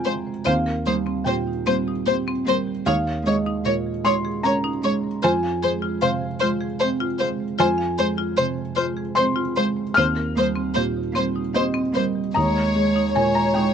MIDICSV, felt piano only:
0, 0, Header, 1, 2, 480
1, 0, Start_track
1, 0, Key_signature, -4, "minor"
1, 0, Tempo, 793651
1, 273, Time_signature, 3, 2, 24, 8
1, 8309, End_track
2, 0, Start_track
2, 0, Title_t, "Felt piano"
2, 0, Program_c, 0, 0
2, 0, Control_c, 0, 64, 127
2, 0, Note_on_c, 0, 41, 58
2, 0, Note_on_c, 0, 48, 51
2, 0, Note_on_c, 0, 56, 43
2, 0, Note_on_c, 0, 60, 49
2, 0, Note_on_c, 0, 79, 75
2, 0, Note_on_c, 0, 80, 80
2, 0, Note_on_c, 0, 82, 81
2, 0, Note_on_c, 0, 84, 83
2, 36, Note_off_c, 0, 56, 0
2, 36, Note_on_c, 0, 56, 41
2, 179, Note_off_c, 0, 60, 0
2, 250, Note_off_c, 0, 41, 0
2, 254, Note_off_c, 0, 80, 0
2, 276, Note_off_c, 0, 56, 0
2, 279, Note_on_c, 0, 39, 56
2, 281, Note_on_c, 0, 77, 79
2, 283, Control_c, 0, 64, 0
2, 285, Note_off_c, 0, 48, 0
2, 285, Note_off_c, 0, 79, 0
2, 286, Note_off_c, 0, 82, 0
2, 287, Note_off_c, 0, 84, 0
2, 389, Control_c, 0, 64, 127
2, 520, Note_on_c, 0, 55, 49
2, 737, Note_off_c, 0, 77, 0
2, 752, Note_on_c, 0, 79, 63
2, 759, Note_on_c, 0, 46, 50
2, 906, Note_off_c, 0, 55, 0
2, 1007, Note_on_c, 0, 55, 44
2, 1146, Note_off_c, 0, 46, 0
2, 1215, Note_off_c, 0, 79, 0
2, 1247, Note_on_c, 0, 60, 47
2, 1391, Note_off_c, 0, 55, 0
2, 1492, Note_on_c, 0, 55, 43
2, 1631, Note_off_c, 0, 60, 0
2, 1704, Note_off_c, 0, 39, 0
2, 1729, Note_off_c, 0, 55, 0
2, 1731, Note_on_c, 0, 39, 56
2, 1731, Note_on_c, 0, 77, 89
2, 1735, Control_c, 0, 64, 0
2, 1846, Control_c, 0, 64, 127
2, 1951, Note_off_c, 0, 77, 0
2, 1975, Note_on_c, 0, 56, 50
2, 1977, Note_on_c, 0, 75, 60
2, 2208, Note_on_c, 0, 46, 48
2, 2352, Note_off_c, 0, 56, 0
2, 2424, Note_off_c, 0, 75, 0
2, 2447, Note_on_c, 0, 84, 86
2, 2448, Note_on_c, 0, 56, 40
2, 2588, Note_off_c, 0, 46, 0
2, 2667, Note_off_c, 0, 84, 0
2, 2681, Note_on_c, 0, 82, 74
2, 2685, Note_on_c, 0, 61, 52
2, 2827, Note_off_c, 0, 56, 0
2, 2927, Note_on_c, 0, 56, 48
2, 3067, Note_off_c, 0, 61, 0
2, 3137, Note_off_c, 0, 82, 0
2, 3140, Note_off_c, 0, 39, 0
2, 3164, Note_off_c, 0, 56, 0
2, 3169, Note_on_c, 0, 41, 59
2, 3169, Note_on_c, 0, 80, 81
2, 3171, Control_c, 0, 64, 0
2, 3275, Control_c, 0, 64, 127
2, 3408, Note_on_c, 0, 56, 47
2, 3620, Note_off_c, 0, 80, 0
2, 3639, Note_on_c, 0, 77, 76
2, 3643, Note_on_c, 0, 48, 49
2, 3786, Note_off_c, 0, 56, 0
2, 3883, Note_on_c, 0, 56, 42
2, 4021, Note_off_c, 0, 48, 0
2, 4122, Note_on_c, 0, 60, 52
2, 4260, Note_off_c, 0, 56, 0
2, 4328, Note_off_c, 0, 77, 0
2, 4359, Note_on_c, 0, 56, 51
2, 4499, Note_off_c, 0, 60, 0
2, 4569, Note_off_c, 0, 41, 0
2, 4593, Note_off_c, 0, 56, 0
2, 4593, Note_on_c, 0, 41, 60
2, 4595, Note_on_c, 0, 80, 93
2, 4600, Control_c, 0, 64, 0
2, 4710, Control_c, 0, 64, 127
2, 4833, Note_on_c, 0, 56, 51
2, 5073, Note_on_c, 0, 48, 49
2, 5210, Note_off_c, 0, 56, 0
2, 5305, Note_on_c, 0, 56, 41
2, 5450, Note_off_c, 0, 48, 0
2, 5519, Note_off_c, 0, 80, 0
2, 5535, Note_on_c, 0, 84, 83
2, 5548, Note_on_c, 0, 60, 52
2, 5687, Note_off_c, 0, 56, 0
2, 5789, Note_on_c, 0, 56, 47
2, 5934, Note_off_c, 0, 60, 0
2, 6000, Note_off_c, 0, 84, 0
2, 6005, Note_off_c, 0, 41, 0
2, 6013, Note_on_c, 0, 89, 92
2, 6031, Note_off_c, 0, 56, 0
2, 6031, Note_on_c, 0, 39, 59
2, 6038, Control_c, 0, 64, 0
2, 6128, Control_c, 0, 64, 127
2, 6275, Note_on_c, 0, 55, 51
2, 6511, Note_on_c, 0, 46, 47
2, 6653, Note_off_c, 0, 55, 0
2, 6754, Note_on_c, 0, 55, 39
2, 6890, Note_off_c, 0, 46, 0
2, 6952, Note_off_c, 0, 89, 0
2, 6981, Note_on_c, 0, 75, 56
2, 6994, Note_on_c, 0, 60, 47
2, 7134, Note_off_c, 0, 55, 0
2, 7237, Note_on_c, 0, 55, 45
2, 7380, Note_off_c, 0, 60, 0
2, 7446, Note_off_c, 0, 75, 0
2, 7449, Note_off_c, 0, 39, 0
2, 7466, Note_on_c, 0, 82, 79
2, 7477, Note_off_c, 0, 55, 0
2, 7479, Note_on_c, 0, 39, 58
2, 7482, Control_c, 0, 64, 0
2, 7583, Control_c, 0, 64, 127
2, 7716, Note_on_c, 0, 56, 43
2, 7926, Note_off_c, 0, 82, 0
2, 7956, Note_on_c, 0, 80, 70
2, 7959, Note_on_c, 0, 46, 40
2, 8067, Note_off_c, 0, 80, 0
2, 8074, Note_on_c, 0, 82, 72
2, 8099, Note_off_c, 0, 56, 0
2, 8186, Note_off_c, 0, 82, 0
2, 8188, Note_on_c, 0, 79, 64
2, 8202, Note_on_c, 0, 56, 34
2, 8304, Note_off_c, 0, 79, 0
2, 8309, Note_off_c, 0, 39, 0
2, 8309, Note_off_c, 0, 46, 0
2, 8309, Note_off_c, 0, 56, 0
2, 8309, End_track
0, 0, End_of_file